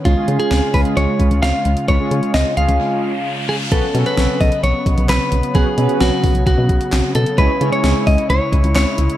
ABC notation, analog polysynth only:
X:1
M:4/4
L:1/16
Q:1/4=131
K:Bmix
V:1 name="Analog polysynth"
[G,C^EG] [G,CEG]3 z2 [G,CEG]4- [G,CEG] z4 z | [G,C^EB] [G,CEG]3 z2 [G,CEG]4- [G,CEG] z4 z | [F,B,CFB] z [F,B,CFA]4- [F,B,CFA] z8 z | [F,B,CFB] z [F,B,CFB]4- [F,B,CFB] z8 z |
[G,CEGc] z [G,CEGc]4- [G,CEGc] z8 z |]